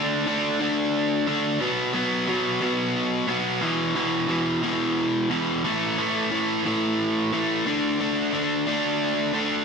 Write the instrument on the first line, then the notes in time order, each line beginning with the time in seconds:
overdriven electric guitar
Already playing: D3 A3 D4
0.26 D3 A3 D4
0.60 D3 A3 D4
1.27 D3 A3 D4
1.60 B2 F#3 B3
1.93 B2 F#3 B3
2.27 B2 F#3 B3
2.61 B2 F#3 B3
3.28 B2 F#3 B3
3.61 E2 B2 E3
3.95 E2 B2 E3
4.28 E2 B2 E3
4.63 E2 B2 E3
5.30 E2 B2 E3
5.64 A2 E3 A3
5.98 A2 E3 A3
6.31 A2 E3 A3
6.66 A2 E3 A3
7.32 A2 E3 A3
7.66 D3 A3 D4
7.99 D3 A3 D4
8.33 D3 A3 D4
8.67 D3 A3 D4
9.33 D3 A3 D4